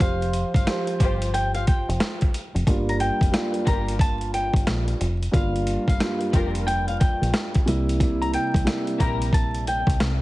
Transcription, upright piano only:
0.00 F3 F4 G4 C5
0.67 F3 F4 G4 C5
2.66 G2 G3 A#3 F4
3.31 G2 G3 A#3 F4
5.31 G2 G3 A#3 F4
6.00 G2 G3 A#3 F4
7.66 C3 G3 A#3 E4
8.00 C3 G3 A#3 E4
8.65 C3 G3 A#3 E4

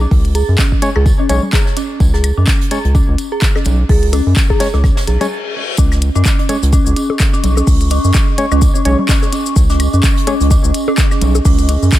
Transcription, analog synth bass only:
0.11 C#2
0.48 F#2
0.96 C#2
1.29 B1
2.00 C#2
2.37 F#2
2.85 C#2
3.08 C#2
3.66 B1
3.89 C#2
4.26 F#2
4.74 C#2
5.07 B1
5.78 C#2
6.15 F#2
6.63 C#2
6.86 C#2
7.44 B1
7.67 C#2
8.04 F#2
8.51 C#2
8.85 B1
9.56 C#2
9.93 F#2
10.40 C#2
10.64 C#2
11.22 B1
11.45 C#2
11.82 F#2

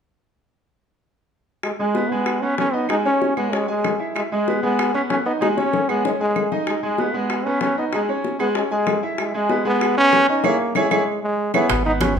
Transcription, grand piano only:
1.80 G#3 G#4
1.95 B3 B4
2.12 G#3 G#4
2.42 B3 B4
2.73 D#4 D#5
2.89 G#3 G#4
3.05 C#4 C#5
3.37 G#3 G#4
3.52 C#4 C#5
3.68 G#4 G#5
3.99 E4 E5
4.32 G#3 G#4
4.47 B3 B4
4.63 G#3 G#4
4.94 B3 B4
5.25 D#4 D#5
5.41 G#3 G#4
5.57 C#4 C#5
5.89 G#3 G#4
6.05 C#4 C#5
6.21 G#4 G#5
6.52 D#4 D#5
6.83 G#3 G#4
6.99 B3 B4
7.14 G#3 G#4
7.46 B3 B4
7.77 D#4 D#5
7.94 G#3 G#4
8.09 C#4 C#5
8.39 G#3 G#4
8.55 C#4 C#5
8.71 G#4 G#5
9.03 E4 E5
9.34 G#3 G#4
9.49 B3 B4
9.65 G#3 G#4
9.97 B3 B4
10.29 D#4 D#5
10.44 E4 G#4 C#5
10.76 E4 G#4 C#5
10.91 E4 G#4 C#5
11.54 E4 G#4 C#5
11.86 B3 B4

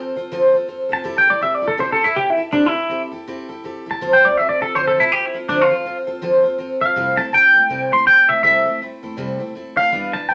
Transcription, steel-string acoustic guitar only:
Already playing: C4 F4 A4 C5
0.16 C4 F4 A4 C5
0.31 D3 F3 C4 F4 A4 C5
0.54 C4 F4 C5
0.68 C4 F4 A4 C5
0.89 C4 F4 A4 C5
1.04 C4 E4 G4 A4
1.26 E4 G4 A4
1.41 C4 E4 G4 A4
1.62 E4 G4 A4
1.77 C4 E4 G4 A4
2.00 E4 G4 A4
2.15 C4 E4 G4 A4
2.37 E4 G4 A4
2.52 C4 E4 G4 A4
2.73 A4
2.89 C4 E4 G4 A4
3.12 E4 G4 A4
3.27 C4 E4 G4 A4
3.49 E4 G4 A4
3.64 C4 E4 G4 A4
3.86 E4 G4 A4
4.01 D3 F3 C4 F4 A4 C5
4.23 C4 F4 A4 C5
4.39 C4 F4 A4 C5
4.60 C4 F4 A4 C5
4.75 D3 F3 C4 F4 A4 C5
4.96 C4 F4 A4 C5
5.12 C4 F4 A4 C5
5.34 C4 F4 A4 C5
5.49 D3 F3 C4 F4 A4 C5
5.71 C4 F4 A4 C5
5.85 C4 F4 A4 C5
6.07 C4 F4 A4 C5
6.21 D3 F3 C4 F4 A4 C5
6.42 C4 F4 A4 C5
6.58 C4 F4 A4 C5
6.81 C4 F4 A4 C5
6.96 C3 G3 A3 C4 E4 A4
7.17 A3 C4 E4 A4
7.32 A3 C4 E4 A4
7.54 A3 C4 E4 A4
7.70 C3 G3 A3 C4 E4 A4
7.92 A3 C4 E4 A4
8.07 A3 C4 A4
8.28 A3 C4 E4 A4
8.44 C3 G3 A3 C4 E4 A4
8.66 A3 C4 E4 A4
8.82 A3 C4 E4 A4
9.03 A3 C4 E4 A4
9.17 C3 G3 A3 C4 E4 A4
9.39 A3 C4 E4 A4
9.55 A3 C4 E4 A4
9.77 A3 C4 E4 A4
9.92 G3 B3 D4 E4 B4
10.14 D4 E4 B4
10.29 B3 D4 E4 B4

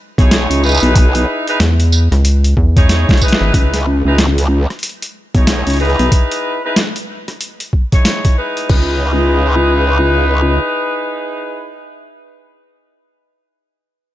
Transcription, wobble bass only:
0.18 B1
0.50 C#2
0.82 B1
3.54 C#2
4.05 C#2
5.34 B1
5.67 C#2
5.99 B1
8.69 C#2

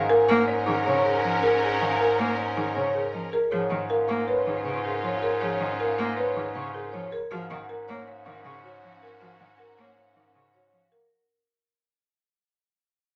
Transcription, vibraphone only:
Already playing: F5
0.09 G#5
0.29 A#4
0.47 D#5
0.66 G#4
0.86 C#5
1.04 A#4
1.24 D#5
1.43 G#4
1.62 D#5
1.80 F5
1.99 G#5
2.18 A#4
2.37 D#5
2.56 G#4
2.75 C#5
2.94 A#4
3.13 D#5
3.32 G#4
3.50 C#5
3.69 D#5
3.89 F5
4.08 A#4
4.27 C#5
4.47 G#4
4.65 B4
4.85 A#4
5.04 C#5
5.22 G#4
5.40 C#5
5.60 D#5
5.79 F5
5.99 A#4
6.17 C#5
6.36 G#4
6.55 B4
6.74 A#4
6.92 C#5
7.11 G#4
7.31 F5
7.50 F#5
7.69 A#5
7.88 C#5
8.08 F5
8.26 A#4
8.45 D#5
8.63 C#5
8.83 F5
9.02 A#4
9.21 F5
9.40 F#5
9.59 A#5
9.78 C#5
9.97 F5
10.16 A#4
10.34 D#5
10.53 C#5
10.73 F5
10.92 A#4

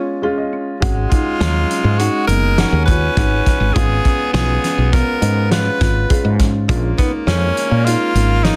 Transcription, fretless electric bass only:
0.82 G#1
1.40 D#2
1.84 G#2
2.28 F#1
2.72 D#2
3.17 G#1
3.60 G#1
3.76 G#1
4.34 B1
4.78 B1
5.22 G#2
5.81 G#1
6.25 G#2
6.69 A#1
7.27 F2
7.71 A#2
8.15 G#1

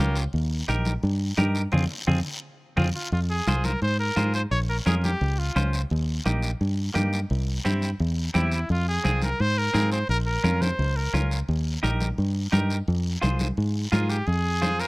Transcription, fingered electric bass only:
0.00 C#2
0.34 D#2
0.69 A#1
1.03 G2
1.38 G2
1.73 F2
2.08 F2
2.78 F2
3.12 F2
3.47 C2
3.82 G#2
4.17 G#2
4.51 A#1
4.87 F2
5.21 C#2
5.56 C#2
5.91 D#2
6.26 A#1
6.61 G2
6.96 G2
7.31 C2
7.65 G2
8.00 E2
8.35 E2
8.70 F2
9.05 C2
9.40 G#2
9.75 G#2
10.09 A#1
10.44 F2
10.79 C#2
11.14 C#2
11.49 D#2
11.83 A#1
12.18 G2
12.53 G2
12.88 F2
13.23 C2
13.58 G#2
13.93 G#2
14.28 F2

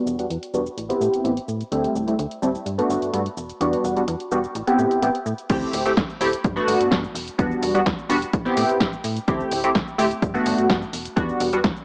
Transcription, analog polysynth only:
Already playing: G3 B3 D4 F#4
0.19 G3 B3 D4 F#4
0.54 G3 B3 D4 F#4
0.89 B3 C4 E4 G4
1.24 B3 C4 E4 G4
1.72 G3 A3 C4 E4
2.07 G3 A3 C4 E4
2.42 G3 A3 C4 E4
2.78 A3 B3 D4 F#4
3.13 A3 B3 D4 F#4
3.60 G3 B3 D4 F#4
3.96 G3 B3 D4 F#4
4.31 G3 B3 D4 F#4
4.67 B3 C4 E4 G4
5.02 B3 C4 E4 G4
5.50 A3 C4 E4 G4
5.86 A3 C4 E4 G4
6.21 A3 C4 E4 G4
6.56 A3 B3 D4 F#4
6.91 A3 B3 D4 F#4
7.38 G3 B3 D4 F#4
7.74 G3 B3 D4 F#4
8.09 G3 B3 D4 F#4
8.45 B3 C4 E4 G4
8.80 B3 C4 E4 G4
9.28 A3 C4 E4 G4
9.64 A3 C4 E4 G4
9.98 A3 C4 E4 G4
10.34 A3 B3 D4 F#4
10.69 A3 B3 D4 F#4
11.16 G3 B3 D4 F#4
11.53 G3 B3 D4 F#4

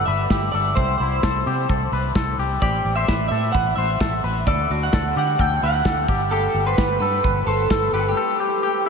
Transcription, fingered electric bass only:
0.07 G1
0.30 G1
0.53 G1
0.76 C2
1.00 C2
1.23 C2
1.46 C3
1.69 C2
1.92 C2
2.15 C2
2.38 C2
2.62 A1
2.84 A1
3.08 A1
3.31 A2
3.54 A1
3.77 A1
4.00 A1
4.24 A1
4.46 D2
4.70 D2
4.93 D2
5.16 D3
5.39 D2
5.63 D2
5.85 D2
6.08 G1
6.54 G1
6.78 G1
7.00 G2
7.24 G1
7.46 G1
7.70 G1
7.93 G1

